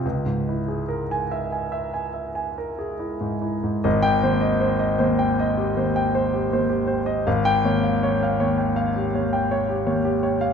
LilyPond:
<<
  \new Staff \with { instrumentName = "Grand piano" } { \time 9/8 \key des \lydian \tempo 4. = 52 << { r4 r16 aes''8 r2 r8. | r16 g''8 r2. r8. | r16 g''8 r2. r8. | } \\ { r1 r8 | ees''8 c''16 ees''16 c''16 ees''16 c''16 g''16 ees''16 g'16 c''16 g''16 c''16 g'16 c''16 g'16 c''16 ees''16 | f''8 des''16 f''16 des''16 f''16 des''16 g''16 f''16 g'16 des''16 g''16 des''16 g'16 des''16 g'16 des''16 f''16 | } >> }
  \new Staff \with { instrumentName = "Grand piano" } { \clef bass \time 9/8 \key des \lydian des,16 aes,16 fes'16 aes'16 bes'8 fes''16 aes''16 fes''16 aes''16 fes''16 aes''16 bes'16 aes'16 fes'16 aes,16 fes'16 aes,16 | aes,,8 ees,8. r16 ees,8. r16 ees,8. r16 ees,8. r16 | aes,,8 ees,8. r16 ees,8. r16 ees,8. r16 ees,8. r16 | }
>>